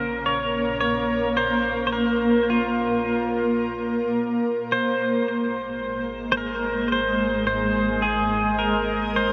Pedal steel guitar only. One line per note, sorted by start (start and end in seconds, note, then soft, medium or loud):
0.00 0.26 A#4 medium
0.26 0.79 C#5 medium
0.81 1.36 C#5 medium
1.37 1.86 C5 medium
1.87 1.92 C5 medium
1.92 2.50 A#4 medium
2.50 4.12 F4 medium
4.72 6.31 C5 medium
6.32 6.37 C5 medium
6.37 6.92 A#4 medium
6.92 7.46 C5 medium
7.47 8.05 C5 medium
8.02 8.55 G#4 medium
8.59 9.11 A#4 medium
9.16 9.33 C5 medium